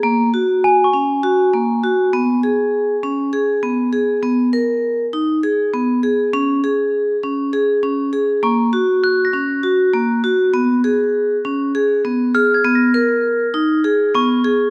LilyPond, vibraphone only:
\new Staff \with { instrumentName = "Vibraphone" } { \time 7/8 \key cis \mixolydian \tempo 4 = 100 ais8 fis'4 cis'8 fis'8 ais8 fis'8 | b8 gis'4 cis'8 gis'8 b8 gis'8 | b8 ais'4 dis'8 gis'8 b8 gis'8 | cis'8 gis'4 cis'8 gis'8 cis'8 gis'8 |
ais8 fis'4 cis'8 fis'8 ais8 fis'8 | b8 gis'4 cis'8 gis'8 b8 gis'8 | b8 ais'4 dis'8 gis'8 b8 gis'8 | }